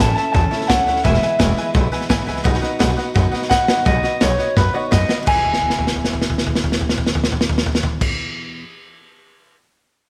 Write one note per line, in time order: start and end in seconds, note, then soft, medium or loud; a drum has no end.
0.00 0.15 A1 loud
0.00 0.16 A2 medium
0.00 0.17 E3 medium
0.00 0.17 A3 medium
0.00 0.16 C#4 medium
0.00 0.14 E4 medium
0.00 0.15 A5 loud
0.16 0.33 A3 soft
0.16 0.34 C#4 soft
0.16 0.34 E4 medium
0.16 0.27 C#5 medium
0.16 0.28 E5 medium
0.16 0.32 A5 medium
0.16 0.28 A5 medium
0.16 muted upright bass stroke medium
0.16 snare soft
0.33 0.50 E2 loud
0.33 0.51 E3 medium
0.33 0.52 A3 medium
0.33 0.51 C#4 medium
0.33 0.50 E4 medium
0.33 0.44 C#5 medium
0.33 0.45 E5 medium
0.33 0.68 A5 loud
0.33 0.45 A5 medium
0.33 kick loud
0.33 snare soft
0.51 0.69 A3 soft
0.51 0.69 C#4 medium
0.51 0.69 E4 medium
0.51 0.62 C#5 medium
0.51 0.62 E5 medium
0.51 0.63 A5 medium
0.51 muted upright bass stroke medium
0.51 snare soft
0.61 snare soft
0.68 0.86 C#2 loud
0.68 0.87 A2 medium
0.68 0.87 E3 medium
0.68 0.87 A3 medium
0.68 0.87 C#4 medium
0.68 0.85 E4 medium
0.68 0.80 C#5 loud
0.68 0.80 E5 medium
0.68 1.04 F#5 loud
0.68 0.80 A5 loud
0.68 kick medium
0.68 snare loud
0.68 hi-hat pedal medium
0.86 1.03 D2 medium
0.86 1.05 A3 soft
0.86 1.05 C#4 medium
0.86 1.04 E4 medium
0.86 0.98 C#5 medium
0.86 0.98 E5 medium
0.86 0.98 F#5 medium
0.86 snare soft
0.96 snare soft
1.03 1.21 E1 medium
1.03 1.22 E2 medium
1.03 1.22 B2 medium
1.03 1.22 E3 medium
1.03 1.22 G#3 medium
1.03 1.21 B3 loud
1.03 1.20 E4 medium
1.03 1.15 B4 loud
1.03 1.71 E5 medium
1.03 1.15 E5 medium
1.03 1.16 G#5 loud
1.03 kick loud
1.03 snare soft
1.14 snare soft
1.21 1.39 E3 soft
1.21 1.39 G#3 medium
1.21 1.40 B3 medium
1.21 1.39 E4 medium
1.21 1.33 B4 medium
1.21 1.33 E5 medium
1.21 1.33 G#5 medium
1.21 muted upright bass stroke medium
1.21 snare soft
1.39 1.56 E1 loud
1.39 1.57 E2 medium
1.39 1.57 B2 medium
1.39 1.57 E3 medium
1.39 1.57 G#3 medium
1.39 1.56 B3 medium
1.39 1.55 E4 loud
1.39 1.50 B4 loud
1.39 1.50 E5 medium
1.39 1.50 G#5 loud
1.39 kick medium
1.39 snare loud
1.39 hi-hat pedal medium
1.56 1.73 E3 medium
1.56 1.74 G#3 medium
1.56 1.75 B3 medium
1.56 1.74 E4 medium
1.56 1.68 B4 medium
1.56 1.68 E5 medium
1.56 1.69 G#5 loud
1.56 muted upright bass stroke medium
1.56 snare soft
1.74 1.91 B1 loud
1.74 1.92 E3 medium
1.74 1.93 G#3 medium
1.74 1.91 B3 medium
1.74 1.90 E4 medium
1.74 1.85 B4 medium
1.74 1.86 E5 medium
1.74 1.86 F#5 medium
1.74 kick loud
1.74 snare soft
1.92 2.09 E3 soft
1.92 2.09 G#3 medium
1.92 2.10 B3 medium
1.92 2.10 E4 medium
1.92 2.03 B4 loud
1.92 2.03 E5 medium
1.92 2.03 G#5 loud
1.92 muted upright bass stroke medium
1.92 snare soft
2.01 snare soft
2.09 2.26 G#1 medium
2.09 2.27 E2 medium
2.09 2.28 B2 medium
2.09 2.28 E3 medium
2.09 2.28 G#3 medium
2.09 2.27 B3 loud
2.09 2.25 E4 loud
2.09 2.20 B4 loud
2.09 2.20 E5 loud
2.09 2.21 G#5 loud
2.09 kick medium
2.09 snare loud
2.09 hi-hat pedal medium
2.27 2.43 C#2 loud
2.27 2.44 E3 soft
2.27 2.45 G#3 medium
2.27 2.44 B3 medium
2.27 2.45 E4 medium
2.27 2.38 B4 medium
2.27 2.38 E5 medium
2.27 2.39 G#5 loud
2.27 snare soft
2.36 snare soft
2.44 2.61 B1 loud
2.44 2.62 B2 medium
2.44 2.62 F#3 medium
2.44 2.63 B3 loud
2.44 2.62 D#4 loud
2.44 2.60 F#4 loud
2.44 2.55 B4 loud
2.44 2.55 D#5 loud
2.44 2.56 F#5 loud
2.44 kick loud
2.44 snare soft
2.54 snare soft
2.62 2.79 B3 medium
2.62 2.79 D#4 medium
2.62 2.80 F#4 medium
2.62 2.73 B4 medium
2.62 2.73 D#5 medium
2.62 2.73 F#5 loud
2.62 muted upright bass stroke medium
2.62 snare soft
2.79 2.96 B1 loud
2.79 2.97 B2 medium
2.79 2.98 F#3 medium
2.79 2.98 B3 medium
2.79 2.97 D#4 loud
2.79 2.95 F#4 loud
2.79 2.90 B4 loud
2.79 2.90 D#5 loud
2.79 2.91 F#5 loud
2.79 kick medium
2.79 snare loud
2.79 hi-hat pedal medium
2.96 3.14 B3 soft
2.96 3.15 D#4 medium
2.96 3.15 F#4 medium
2.96 3.08 B4 medium
2.96 3.08 D#5 medium
2.96 3.08 F#5 loud
2.96 muted upright bass stroke medium
2.96 snare soft
3.14 3.32 F#2 loud
3.14 3.32 F#3 medium
3.14 3.33 B3 medium
3.14 3.33 D#4 medium
3.14 3.31 F#4 medium
3.14 3.26 B4 medium
3.14 3.26 D#5 medium
3.14 3.26 F#5 loud
3.14 kick loud
3.14 snare soft
3.31 3.50 D#4 medium
3.31 3.51 F#4 medium
3.31 3.43 B4 medium
3.31 3.43 D#5 medium
3.31 3.43 F#5 loud
3.31 muted upright bass stroke medium
3.31 snare soft
3.36 3.50 B3 medium
3.42 snare soft
3.49 3.67 D#2 medium
3.49 3.68 B2 medium
3.49 3.68 F#3 medium
3.49 3.68 B3 medium
3.49 3.68 D#4 loud
3.49 3.66 F#4 medium
3.49 3.61 B4 loud
3.49 3.61 D#5 loud
3.49 3.86 F#5 loud
3.49 3.62 F#5 loud
3.49 kick medium
3.49 snare medium
3.49 hi-hat pedal medium
3.67 3.85 F#2 medium
3.67 3.85 B3 medium
3.67 3.85 D#4 medium
3.67 3.85 F#4 medium
3.67 3.79 B4 medium
3.67 3.79 D#5 medium
3.67 3.79 F#5 loud
3.67 snare loud
3.85 4.02 B1 medium
3.85 4.03 B2 medium
3.85 4.03 F#3 medium
3.85 4.04 B3 medium
3.85 4.03 D#4 medium
3.85 4.02 F#4 medium
3.85 3.96 B4 loud
3.85 4.22 D#5 medium
3.85 3.97 D#5 medium
3.85 3.97 F#5 loud
3.85 kick loud
3.85 snare soft
4.03 4.20 B3 soft
4.03 4.21 D#4 medium
4.03 4.21 F#4 medium
4.03 4.14 B4 medium
4.03 4.14 D#5 medium
4.03 4.15 F#5 medium
4.03 muted upright bass stroke medium
4.03 snare soft
4.20 4.37 B1 loud
4.20 4.38 B2 medium
4.20 4.39 F#3 medium
4.20 4.39 B3 medium
4.20 4.39 D#4 medium
4.20 4.37 F#4 medium
4.20 4.32 B4 medium
4.20 4.57 C#5 medium
4.20 4.32 D#5 medium
4.20 4.32 F#5 medium
4.20 kick medium
4.20 snare loud
4.20 hi-hat pedal medium
4.38 4.56 B3 soft
4.38 4.57 D#4 soft
4.38 4.56 F#4 medium
4.38 4.49 B4 medium
4.38 4.49 D#5 medium
4.38 4.50 F#5 medium
4.38 muted upright bass stroke medium
4.38 snare soft
4.56 4.72 F#2 loud
4.56 4.74 F#3 medium
4.56 4.75 B3 medium
4.56 4.74 D#4 medium
4.56 4.72 F#4 medium
4.56 4.67 B4 medium
4.56 4.74 B4 medium
4.56 4.67 D#5 medium
4.56 4.68 F#5 medium
4.56 kick loud
4.56 snare medium
4.73 4.91 B3 soft
4.73 4.92 D#4 medium
4.73 4.91 F#4 medium
4.73 4.85 B4 medium
4.73 4.92 C#5 medium
4.73 4.85 D#5 medium
4.73 4.85 F#5 loud
4.73 muted upright bass stroke medium
4.91 5.07 F#2 medium
4.91 5.09 B2 medium
4.91 5.09 F#3 medium
4.91 5.10 B3 medium
4.91 5.10 D#4 medium
4.91 5.08 F#4 medium
4.91 5.02 B4 loud
4.91 5.02 D#5 medium
4.91 5.16 D#5 medium
4.91 5.03 F#5 loud
4.91 kick medium
4.91 snare medium
4.91 hi-hat pedal medium
5.09 5.29 B3 soft
5.09 5.28 D#4 soft
5.09 5.27 F#4 medium
5.09 5.20 B4 medium
5.09 5.20 D#5 medium
5.09 5.20 F#5 medium
5.09 muted upright bass stroke medium
5.09 snare loud
5.23 8.63 E2 medium
5.23 8.63 B2 medium
5.23 8.03 B4 medium
5.27 8.04 E1 medium
5.27 8.63 E3 medium
5.27 8.04 E5 medium
5.27 8.04 G#5 medium
5.27 8.05 G#5 medium
5.27 kick loud
5.27 crash medium
5.32 8.63 B3 medium
5.32 8.63 E4 medium
5.38 8.63 G#4 medium
5.45 floor tom soft
5.53 snare soft
5.62 floor tom soft
5.70 snare medium
5.78 floor tom medium
5.87 snare medium
5.96 floor tom soft
6.04 snare medium
6.13 floor tom medium
6.22 snare medium
6.30 floor tom medium
6.38 snare medium
6.47 floor tom medium
6.55 snare medium
6.64 floor tom medium
6.72 snare medium
6.81 floor tom medium
6.89 snare medium
6.98 floor tom medium
7.07 snare medium
7.15 floor tom medium
7.24 snare medium
7.32 floor tom medium
7.41 snare medium
7.49 floor tom medium
7.58 snare medium
7.66 floor tom medium
7.75 snare medium
7.83 floor tom medium
8.01 kick loud
8.01 crash medium